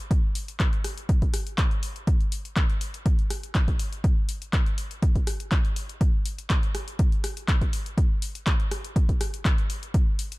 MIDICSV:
0, 0, Header, 1, 2, 480
1, 0, Start_track
1, 0, Tempo, 491803
1, 104, Time_signature, 4, 2, 24, 8
1, 10137, End_track
2, 0, Start_track
2, 0, Title_t, "Drums"
2, 105, Note_on_c, 9, 36, 125
2, 106, Note_on_c, 9, 42, 64
2, 202, Note_off_c, 9, 36, 0
2, 203, Note_off_c, 9, 42, 0
2, 344, Note_on_c, 9, 46, 111
2, 442, Note_off_c, 9, 46, 0
2, 472, Note_on_c, 9, 42, 55
2, 570, Note_off_c, 9, 42, 0
2, 583, Note_on_c, 9, 39, 120
2, 584, Note_on_c, 9, 36, 118
2, 584, Note_on_c, 9, 42, 61
2, 680, Note_off_c, 9, 39, 0
2, 682, Note_off_c, 9, 36, 0
2, 682, Note_off_c, 9, 42, 0
2, 712, Note_on_c, 9, 42, 35
2, 809, Note_off_c, 9, 42, 0
2, 824, Note_on_c, 9, 37, 62
2, 824, Note_on_c, 9, 46, 109
2, 922, Note_off_c, 9, 37, 0
2, 922, Note_off_c, 9, 46, 0
2, 952, Note_on_c, 9, 42, 54
2, 1049, Note_off_c, 9, 42, 0
2, 1064, Note_on_c, 9, 36, 122
2, 1064, Note_on_c, 9, 42, 64
2, 1162, Note_off_c, 9, 36, 0
2, 1162, Note_off_c, 9, 42, 0
2, 1191, Note_on_c, 9, 42, 35
2, 1192, Note_on_c, 9, 36, 64
2, 1289, Note_off_c, 9, 36, 0
2, 1289, Note_off_c, 9, 42, 0
2, 1304, Note_on_c, 9, 37, 63
2, 1304, Note_on_c, 9, 46, 111
2, 1401, Note_off_c, 9, 37, 0
2, 1401, Note_off_c, 9, 46, 0
2, 1431, Note_on_c, 9, 42, 49
2, 1528, Note_off_c, 9, 42, 0
2, 1542, Note_on_c, 9, 39, 120
2, 1544, Note_on_c, 9, 36, 125
2, 1544, Note_on_c, 9, 42, 63
2, 1640, Note_off_c, 9, 39, 0
2, 1641, Note_off_c, 9, 42, 0
2, 1642, Note_off_c, 9, 36, 0
2, 1671, Note_on_c, 9, 42, 35
2, 1769, Note_off_c, 9, 42, 0
2, 1784, Note_on_c, 9, 46, 112
2, 1882, Note_off_c, 9, 46, 0
2, 1912, Note_on_c, 9, 42, 49
2, 2010, Note_off_c, 9, 42, 0
2, 2024, Note_on_c, 9, 36, 126
2, 2025, Note_on_c, 9, 42, 62
2, 2121, Note_off_c, 9, 36, 0
2, 2122, Note_off_c, 9, 42, 0
2, 2152, Note_on_c, 9, 42, 36
2, 2250, Note_off_c, 9, 42, 0
2, 2265, Note_on_c, 9, 46, 111
2, 2362, Note_off_c, 9, 46, 0
2, 2392, Note_on_c, 9, 42, 53
2, 2490, Note_off_c, 9, 42, 0
2, 2503, Note_on_c, 9, 39, 121
2, 2504, Note_on_c, 9, 36, 120
2, 2504, Note_on_c, 9, 42, 61
2, 2600, Note_off_c, 9, 39, 0
2, 2601, Note_off_c, 9, 36, 0
2, 2602, Note_off_c, 9, 42, 0
2, 2632, Note_on_c, 9, 42, 35
2, 2729, Note_off_c, 9, 42, 0
2, 2743, Note_on_c, 9, 46, 114
2, 2841, Note_off_c, 9, 46, 0
2, 2871, Note_on_c, 9, 42, 51
2, 2968, Note_off_c, 9, 42, 0
2, 2983, Note_on_c, 9, 36, 125
2, 2984, Note_on_c, 9, 42, 65
2, 3081, Note_off_c, 9, 36, 0
2, 3081, Note_off_c, 9, 42, 0
2, 3111, Note_on_c, 9, 42, 35
2, 3209, Note_off_c, 9, 42, 0
2, 3225, Note_on_c, 9, 37, 63
2, 3225, Note_on_c, 9, 46, 108
2, 3323, Note_off_c, 9, 37, 0
2, 3323, Note_off_c, 9, 46, 0
2, 3352, Note_on_c, 9, 42, 50
2, 3450, Note_off_c, 9, 42, 0
2, 3463, Note_on_c, 9, 39, 118
2, 3464, Note_on_c, 9, 36, 125
2, 3464, Note_on_c, 9, 42, 62
2, 3561, Note_off_c, 9, 36, 0
2, 3561, Note_off_c, 9, 39, 0
2, 3562, Note_off_c, 9, 42, 0
2, 3591, Note_on_c, 9, 36, 64
2, 3592, Note_on_c, 9, 42, 34
2, 3688, Note_off_c, 9, 36, 0
2, 3689, Note_off_c, 9, 42, 0
2, 3704, Note_on_c, 9, 46, 113
2, 3801, Note_off_c, 9, 46, 0
2, 3831, Note_on_c, 9, 42, 51
2, 3929, Note_off_c, 9, 42, 0
2, 3944, Note_on_c, 9, 36, 123
2, 3944, Note_on_c, 9, 42, 64
2, 4041, Note_off_c, 9, 36, 0
2, 4042, Note_off_c, 9, 42, 0
2, 4184, Note_on_c, 9, 46, 106
2, 4282, Note_off_c, 9, 46, 0
2, 4312, Note_on_c, 9, 42, 51
2, 4409, Note_off_c, 9, 42, 0
2, 4423, Note_on_c, 9, 39, 112
2, 4424, Note_on_c, 9, 36, 120
2, 4424, Note_on_c, 9, 42, 61
2, 4521, Note_off_c, 9, 39, 0
2, 4522, Note_off_c, 9, 36, 0
2, 4522, Note_off_c, 9, 42, 0
2, 4552, Note_on_c, 9, 42, 35
2, 4650, Note_off_c, 9, 42, 0
2, 4664, Note_on_c, 9, 46, 108
2, 4762, Note_off_c, 9, 46, 0
2, 4791, Note_on_c, 9, 42, 53
2, 4889, Note_off_c, 9, 42, 0
2, 4904, Note_on_c, 9, 36, 118
2, 4904, Note_on_c, 9, 42, 64
2, 5002, Note_off_c, 9, 36, 0
2, 5002, Note_off_c, 9, 42, 0
2, 5031, Note_on_c, 9, 36, 59
2, 5032, Note_on_c, 9, 42, 35
2, 5129, Note_off_c, 9, 36, 0
2, 5129, Note_off_c, 9, 42, 0
2, 5145, Note_on_c, 9, 37, 66
2, 5145, Note_on_c, 9, 46, 109
2, 5242, Note_off_c, 9, 37, 0
2, 5242, Note_off_c, 9, 46, 0
2, 5271, Note_on_c, 9, 42, 50
2, 5369, Note_off_c, 9, 42, 0
2, 5383, Note_on_c, 9, 39, 115
2, 5384, Note_on_c, 9, 36, 121
2, 5385, Note_on_c, 9, 42, 61
2, 5481, Note_off_c, 9, 39, 0
2, 5482, Note_off_c, 9, 36, 0
2, 5482, Note_off_c, 9, 42, 0
2, 5512, Note_on_c, 9, 42, 35
2, 5609, Note_off_c, 9, 42, 0
2, 5625, Note_on_c, 9, 46, 108
2, 5722, Note_off_c, 9, 46, 0
2, 5753, Note_on_c, 9, 42, 51
2, 5850, Note_off_c, 9, 42, 0
2, 5864, Note_on_c, 9, 36, 118
2, 5865, Note_on_c, 9, 42, 66
2, 5962, Note_off_c, 9, 36, 0
2, 5962, Note_off_c, 9, 42, 0
2, 6105, Note_on_c, 9, 46, 103
2, 6202, Note_off_c, 9, 46, 0
2, 6232, Note_on_c, 9, 42, 54
2, 6329, Note_off_c, 9, 42, 0
2, 6343, Note_on_c, 9, 39, 113
2, 6344, Note_on_c, 9, 36, 113
2, 6344, Note_on_c, 9, 42, 66
2, 6441, Note_off_c, 9, 39, 0
2, 6442, Note_off_c, 9, 36, 0
2, 6442, Note_off_c, 9, 42, 0
2, 6472, Note_on_c, 9, 42, 37
2, 6570, Note_off_c, 9, 42, 0
2, 6584, Note_on_c, 9, 37, 70
2, 6584, Note_on_c, 9, 46, 101
2, 6682, Note_off_c, 9, 37, 0
2, 6682, Note_off_c, 9, 46, 0
2, 6712, Note_on_c, 9, 42, 52
2, 6809, Note_off_c, 9, 42, 0
2, 6824, Note_on_c, 9, 36, 116
2, 6824, Note_on_c, 9, 42, 65
2, 6921, Note_off_c, 9, 42, 0
2, 6922, Note_off_c, 9, 36, 0
2, 6952, Note_on_c, 9, 42, 36
2, 7050, Note_off_c, 9, 42, 0
2, 7065, Note_on_c, 9, 37, 68
2, 7065, Note_on_c, 9, 46, 102
2, 7163, Note_off_c, 9, 37, 0
2, 7163, Note_off_c, 9, 46, 0
2, 7193, Note_on_c, 9, 42, 52
2, 7290, Note_off_c, 9, 42, 0
2, 7304, Note_on_c, 9, 36, 114
2, 7304, Note_on_c, 9, 39, 115
2, 7305, Note_on_c, 9, 42, 66
2, 7401, Note_off_c, 9, 39, 0
2, 7402, Note_off_c, 9, 36, 0
2, 7402, Note_off_c, 9, 42, 0
2, 7432, Note_on_c, 9, 36, 58
2, 7432, Note_on_c, 9, 42, 35
2, 7529, Note_off_c, 9, 36, 0
2, 7530, Note_off_c, 9, 42, 0
2, 7545, Note_on_c, 9, 46, 103
2, 7643, Note_off_c, 9, 46, 0
2, 7673, Note_on_c, 9, 42, 52
2, 7770, Note_off_c, 9, 42, 0
2, 7784, Note_on_c, 9, 36, 114
2, 7786, Note_on_c, 9, 42, 68
2, 7882, Note_off_c, 9, 36, 0
2, 7883, Note_off_c, 9, 42, 0
2, 8024, Note_on_c, 9, 46, 101
2, 8122, Note_off_c, 9, 46, 0
2, 8152, Note_on_c, 9, 42, 56
2, 8249, Note_off_c, 9, 42, 0
2, 8263, Note_on_c, 9, 39, 116
2, 8264, Note_on_c, 9, 36, 109
2, 8264, Note_on_c, 9, 42, 66
2, 8361, Note_off_c, 9, 39, 0
2, 8362, Note_off_c, 9, 36, 0
2, 8362, Note_off_c, 9, 42, 0
2, 8392, Note_on_c, 9, 42, 37
2, 8489, Note_off_c, 9, 42, 0
2, 8505, Note_on_c, 9, 37, 70
2, 8505, Note_on_c, 9, 46, 101
2, 8603, Note_off_c, 9, 37, 0
2, 8603, Note_off_c, 9, 46, 0
2, 8633, Note_on_c, 9, 42, 55
2, 8730, Note_off_c, 9, 42, 0
2, 8744, Note_on_c, 9, 36, 110
2, 8746, Note_on_c, 9, 42, 68
2, 8842, Note_off_c, 9, 36, 0
2, 8843, Note_off_c, 9, 42, 0
2, 8871, Note_on_c, 9, 36, 58
2, 8873, Note_on_c, 9, 42, 37
2, 8969, Note_off_c, 9, 36, 0
2, 8971, Note_off_c, 9, 42, 0
2, 8986, Note_on_c, 9, 37, 70
2, 8986, Note_on_c, 9, 46, 100
2, 9084, Note_off_c, 9, 37, 0
2, 9084, Note_off_c, 9, 46, 0
2, 9114, Note_on_c, 9, 42, 54
2, 9211, Note_off_c, 9, 42, 0
2, 9224, Note_on_c, 9, 36, 118
2, 9225, Note_on_c, 9, 39, 121
2, 9227, Note_on_c, 9, 42, 67
2, 9322, Note_off_c, 9, 36, 0
2, 9323, Note_off_c, 9, 39, 0
2, 9324, Note_off_c, 9, 42, 0
2, 9353, Note_on_c, 9, 42, 38
2, 9451, Note_off_c, 9, 42, 0
2, 9465, Note_on_c, 9, 46, 102
2, 9563, Note_off_c, 9, 46, 0
2, 9593, Note_on_c, 9, 42, 53
2, 9690, Note_off_c, 9, 42, 0
2, 9704, Note_on_c, 9, 36, 113
2, 9704, Note_on_c, 9, 42, 73
2, 9802, Note_off_c, 9, 36, 0
2, 9802, Note_off_c, 9, 42, 0
2, 9945, Note_on_c, 9, 46, 108
2, 10042, Note_off_c, 9, 46, 0
2, 10072, Note_on_c, 9, 42, 57
2, 10137, Note_off_c, 9, 42, 0
2, 10137, End_track
0, 0, End_of_file